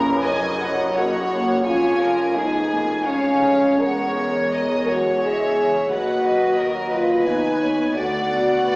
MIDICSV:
0, 0, Header, 1, 8, 480
1, 0, Start_track
1, 0, Key_signature, 6, "major"
1, 0, Tempo, 712589
1, 1107, Time_signature, 3, 2, 24, 8
1, 2060, Tempo, 734394
1, 3020, Tempo, 686499
1, 5979, End_track
2, 0, Start_track
2, 0, Title_t, "Violin section"
2, 0, Program_c, 0, 48
2, 0, Note_on_c, 0, 82, 66
2, 126, Note_off_c, 0, 82, 0
2, 152, Note_on_c, 0, 80, 65
2, 393, Note_off_c, 0, 80, 0
2, 404, Note_on_c, 0, 78, 64
2, 631, Note_off_c, 0, 78, 0
2, 639, Note_on_c, 0, 78, 60
2, 1099, Note_off_c, 0, 78, 0
2, 1115, Note_on_c, 0, 80, 59
2, 1577, Note_off_c, 0, 80, 0
2, 1599, Note_on_c, 0, 80, 54
2, 2059, Note_off_c, 0, 80, 0
2, 2066, Note_on_c, 0, 77, 55
2, 2555, Note_off_c, 0, 77, 0
2, 2571, Note_on_c, 0, 73, 55
2, 3503, Note_off_c, 0, 73, 0
2, 3525, Note_on_c, 0, 76, 54
2, 3982, Note_off_c, 0, 76, 0
2, 3996, Note_on_c, 0, 78, 61
2, 4219, Note_off_c, 0, 78, 0
2, 4228, Note_on_c, 0, 75, 55
2, 4929, Note_on_c, 0, 80, 55
2, 4931, Note_off_c, 0, 75, 0
2, 5410, Note_off_c, 0, 80, 0
2, 5424, Note_on_c, 0, 78, 61
2, 5979, Note_off_c, 0, 78, 0
2, 5979, End_track
3, 0, Start_track
3, 0, Title_t, "Flute section"
3, 0, Program_c, 1, 73
3, 0, Note_on_c, 1, 71, 60
3, 153, Note_off_c, 1, 71, 0
3, 165, Note_on_c, 1, 73, 66
3, 643, Note_off_c, 1, 73, 0
3, 649, Note_on_c, 1, 75, 59
3, 879, Note_off_c, 1, 75, 0
3, 881, Note_on_c, 1, 73, 58
3, 1111, Note_off_c, 1, 73, 0
3, 1116, Note_on_c, 1, 77, 66
3, 1347, Note_off_c, 1, 77, 0
3, 1347, Note_on_c, 1, 80, 75
3, 2352, Note_off_c, 1, 80, 0
3, 2561, Note_on_c, 1, 78, 64
3, 2793, Note_off_c, 1, 78, 0
3, 2796, Note_on_c, 1, 73, 64
3, 3516, Note_off_c, 1, 73, 0
3, 3521, Note_on_c, 1, 75, 59
3, 3755, Note_off_c, 1, 75, 0
3, 3765, Note_on_c, 1, 73, 54
3, 3987, Note_off_c, 1, 73, 0
3, 3990, Note_on_c, 1, 75, 68
3, 4929, Note_off_c, 1, 75, 0
3, 4939, Note_on_c, 1, 71, 57
3, 5172, Note_off_c, 1, 71, 0
3, 5173, Note_on_c, 1, 73, 57
3, 5408, Note_off_c, 1, 73, 0
3, 5410, Note_on_c, 1, 74, 62
3, 5897, Note_off_c, 1, 74, 0
3, 5900, Note_on_c, 1, 71, 63
3, 5979, Note_off_c, 1, 71, 0
3, 5979, End_track
4, 0, Start_track
4, 0, Title_t, "Violin section"
4, 0, Program_c, 2, 48
4, 0, Note_on_c, 2, 70, 65
4, 153, Note_off_c, 2, 70, 0
4, 156, Note_on_c, 2, 75, 61
4, 638, Note_off_c, 2, 75, 0
4, 642, Note_on_c, 2, 73, 55
4, 1099, Note_off_c, 2, 73, 0
4, 1108, Note_on_c, 2, 73, 59
4, 1338, Note_off_c, 2, 73, 0
4, 1352, Note_on_c, 2, 70, 63
4, 1584, Note_on_c, 2, 68, 58
4, 1587, Note_off_c, 2, 70, 0
4, 2060, Note_on_c, 2, 73, 49
4, 2061, Note_off_c, 2, 68, 0
4, 2547, Note_off_c, 2, 73, 0
4, 2555, Note_on_c, 2, 73, 59
4, 3013, Note_off_c, 2, 73, 0
4, 3027, Note_on_c, 2, 75, 56
4, 3272, Note_off_c, 2, 75, 0
4, 3274, Note_on_c, 2, 73, 55
4, 3987, Note_off_c, 2, 73, 0
4, 3991, Note_on_c, 2, 71, 56
4, 4448, Note_off_c, 2, 71, 0
4, 4454, Note_on_c, 2, 70, 58
4, 4689, Note_on_c, 2, 71, 57
4, 4690, Note_off_c, 2, 70, 0
4, 5408, Note_off_c, 2, 71, 0
4, 5420, Note_on_c, 2, 74, 57
4, 5890, Note_off_c, 2, 74, 0
4, 5898, Note_on_c, 2, 74, 60
4, 5979, Note_off_c, 2, 74, 0
4, 5979, End_track
5, 0, Start_track
5, 0, Title_t, "French horn section"
5, 0, Program_c, 3, 60
5, 0, Note_on_c, 3, 61, 82
5, 126, Note_off_c, 3, 61, 0
5, 154, Note_on_c, 3, 70, 91
5, 637, Note_off_c, 3, 70, 0
5, 644, Note_on_c, 3, 66, 87
5, 1108, Note_on_c, 3, 65, 82
5, 1111, Note_off_c, 3, 66, 0
5, 1573, Note_off_c, 3, 65, 0
5, 1587, Note_on_c, 3, 63, 74
5, 2058, Note_on_c, 3, 61, 84
5, 2062, Note_off_c, 3, 63, 0
5, 2548, Note_on_c, 3, 70, 84
5, 2551, Note_off_c, 3, 61, 0
5, 3262, Note_on_c, 3, 66, 78
5, 3266, Note_off_c, 3, 70, 0
5, 3509, Note_off_c, 3, 66, 0
5, 3509, Note_on_c, 3, 68, 84
5, 3868, Note_off_c, 3, 68, 0
5, 3987, Note_on_c, 3, 66, 85
5, 4677, Note_off_c, 3, 66, 0
5, 4696, Note_on_c, 3, 65, 70
5, 4929, Note_off_c, 3, 65, 0
5, 4935, Note_on_c, 3, 63, 83
5, 5413, Note_off_c, 3, 63, 0
5, 5416, Note_on_c, 3, 66, 96
5, 5979, Note_off_c, 3, 66, 0
5, 5979, End_track
6, 0, Start_track
6, 0, Title_t, "Viola section"
6, 0, Program_c, 4, 48
6, 0, Note_on_c, 4, 58, 61
6, 131, Note_off_c, 4, 58, 0
6, 170, Note_on_c, 4, 54, 59
6, 645, Note_off_c, 4, 54, 0
6, 649, Note_on_c, 4, 58, 64
6, 880, Note_off_c, 4, 58, 0
6, 890, Note_on_c, 4, 58, 62
6, 1111, Note_off_c, 4, 58, 0
6, 1122, Note_on_c, 4, 61, 59
6, 1590, Note_off_c, 4, 61, 0
6, 1592, Note_on_c, 4, 59, 58
6, 1827, Note_off_c, 4, 59, 0
6, 1832, Note_on_c, 4, 58, 59
6, 2066, Note_off_c, 4, 58, 0
6, 2066, Note_on_c, 4, 56, 63
6, 3987, Note_off_c, 4, 56, 0
6, 3995, Note_on_c, 4, 54, 56
6, 4931, Note_off_c, 4, 54, 0
6, 4936, Note_on_c, 4, 59, 56
6, 5404, Note_off_c, 4, 59, 0
6, 5414, Note_on_c, 4, 57, 60
6, 5654, Note_off_c, 4, 57, 0
6, 5662, Note_on_c, 4, 59, 60
6, 5979, Note_off_c, 4, 59, 0
6, 5979, End_track
7, 0, Start_track
7, 0, Title_t, "Cello section"
7, 0, Program_c, 5, 48
7, 0, Note_on_c, 5, 42, 67
7, 1082, Note_off_c, 5, 42, 0
7, 1108, Note_on_c, 5, 41, 65
7, 2527, Note_off_c, 5, 41, 0
7, 2561, Note_on_c, 5, 40, 63
7, 3961, Note_off_c, 5, 40, 0
7, 3987, Note_on_c, 5, 39, 60
7, 5382, Note_off_c, 5, 39, 0
7, 5414, Note_on_c, 5, 38, 63
7, 5979, Note_off_c, 5, 38, 0
7, 5979, End_track
8, 0, Start_track
8, 0, Title_t, "Double bass section"
8, 0, Program_c, 6, 48
8, 0, Note_on_c, 6, 30, 65
8, 1083, Note_off_c, 6, 30, 0
8, 1110, Note_on_c, 6, 29, 58
8, 2528, Note_off_c, 6, 29, 0
8, 2552, Note_on_c, 6, 28, 60
8, 3956, Note_off_c, 6, 28, 0
8, 3985, Note_on_c, 6, 39, 60
8, 5381, Note_off_c, 6, 39, 0
8, 5409, Note_on_c, 6, 38, 58
8, 5979, Note_off_c, 6, 38, 0
8, 5979, End_track
0, 0, End_of_file